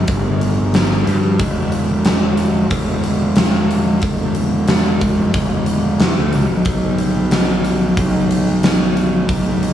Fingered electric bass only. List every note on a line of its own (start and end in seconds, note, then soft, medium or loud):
0.08 1.03 G1 medium
1.07 1.37 G2 loud
1.39 2.67 E1 medium
2.71 3.99 E1 medium
4.02 5.30 E1 medium
5.34 5.96 E1 medium
6.00 6.15 E2 medium
6.17 6.32 D2 medium
6.34 6.49 C#2 medium
6.51 6.65 B1 medium
6.66 7.93 B1 medium
7.97 9.25 B1 medium
9.29 9.73 B1 medium